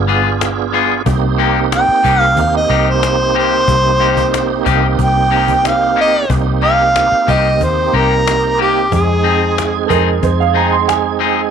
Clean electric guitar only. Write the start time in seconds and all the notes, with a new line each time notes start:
0.07 G3 B3 F4 G#4
0.72 G3 B3 F4 G#4
1.38 C3 A#3 D#4 G4
2.03 C3 A#3 D#4 G4
2.69 C3 A#3 D#4 G4
3.34 C3 A#3 D#4 G4
3.99 C3 A#3 D#4 G4
4.65 C3 A#3 D#4 G4
5.30 C3 A#3 D#4 G4
5.96 C3 A#3 D#4 G4
6.61 C3 A#3 D#4 G4
7.27 C3 A#3 D#4 G4
7.93 C3 A#3 D#4 G4
8.58 C3 A#3 D#4 G4
9.23 F3 C4 D#4 G#4
9.88 F3 C4 D#4 G#4
10.54 F3 C4 D#4 G#4
11.19 F3 C4 D#4 G#4